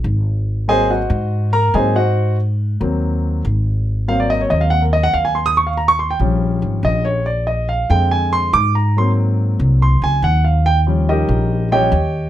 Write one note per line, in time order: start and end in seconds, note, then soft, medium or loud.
0.04 1.04 G#1 medium
0.68 0.96 F#3 medium
0.68 0.97 A#3 medium
0.68 0.97 C4 medium
0.68 0.89 G#4 medium
0.68 0.89 C5 medium
0.68 0.89 D#5 medium
0.68 0.89 G#5 loud
0.91 1.50 F#4 medium
0.91 1.50 C5 medium
0.91 1.50 D#5 medium
0.91 1.50 F#5 medium
1.10 1.70 G#2 loud
1.53 1.74 A#4 medium
1.53 1.74 A#5 loud
1.74 2.74 G#2 loud
1.74 1.93 F#3 medium
1.74 1.94 A#3 soft
1.74 1.94 C4 medium
1.74 1.95 G#4 medium
1.74 1.95 C5 medium
1.74 1.94 D#5 medium
1.74 1.95 G#5 medium
1.96 2.35 F#4 medium
1.96 2.35 C5 medium
1.96 2.35 D#5 medium
1.96 2.35 F#5 medium
2.80 3.40 D#2 medium
2.80 3.41 F#3 medium
2.80 3.41 A#3 medium
2.80 3.41 C4 medium
3.45 4.44 G#1 medium
4.08 5.52 F#3 medium
4.08 5.52 A#3 medium
4.08 5.53 C4 medium
4.08 4.18 F5 loud
4.20 4.29 D5 medium
4.30 4.40 D#5 medium
4.41 4.51 C#5 medium
4.50 5.10 D#2 medium
4.50 4.60 D#5 medium
4.61 4.71 F5 medium
4.70 4.81 F#5 loud
4.82 4.92 A#4 medium
4.93 5.03 D#5 medium
5.03 5.14 F#5 loud
5.13 6.13 D#2 medium
5.13 5.24 F5 medium
5.25 5.35 G#5 medium
5.35 5.45 C6 medium
5.46 5.56 D#6 loud
5.57 5.67 C#6 medium
5.67 5.77 F5 medium
5.77 5.88 A#5 medium
5.88 5.98 C#6 loud
5.99 6.09 C6 medium
6.11 6.16 G5 medium
6.19 6.59 A#1 medium
6.19 7.22 F3 medium
6.19 7.22 G3 medium
6.19 7.22 C#4 medium
6.62 6.82 G#1 medium
6.83 7.83 A#1 medium
6.83 7.05 D#5 loud
7.05 7.25 C#5 medium
7.26 7.46 D5 medium
7.47 7.68 D#5 medium
7.69 7.89 F5 medium
7.90 8.49 F2 medium
7.90 8.50 D3 medium
7.90 8.50 G#3 medium
7.90 8.51 C4 medium
7.90 8.11 G5 loud
8.11 8.32 G#5 loud
8.33 8.53 C6 loud
8.53 9.53 G#2 loud
8.53 8.74 D6 loud
8.75 8.95 A#5 medium
8.97 10.62 F#3 medium
8.97 10.62 A#3 medium
8.97 10.63 C4 medium
8.97 9.10 C6 medium
9.59 9.99 C2 medium
9.82 10.02 C6 medium
10.02 10.21 C#2 medium
10.02 10.23 G#5 loud
10.22 11.22 D#2 medium
10.22 10.44 F#5 medium
10.44 10.65 F5 medium
10.66 10.78 G5 loud
10.87 11.70 F3 medium
10.87 11.71 G3 medium
10.87 11.71 C#4 medium
11.09 11.68 D#4 medium
11.09 11.68 G4 medium
11.09 11.68 A#4 medium
11.09 11.68 D#5 medium
11.29 11.88 A#1 medium
11.71 11.90 F3 medium
11.71 11.91 G3 soft
11.71 11.91 C#4 medium
11.71 12.30 G4 medium
11.71 12.30 C#5 medium
11.71 12.30 D#5 medium
11.71 12.30 G5 loud
11.92 12.30 D#2 medium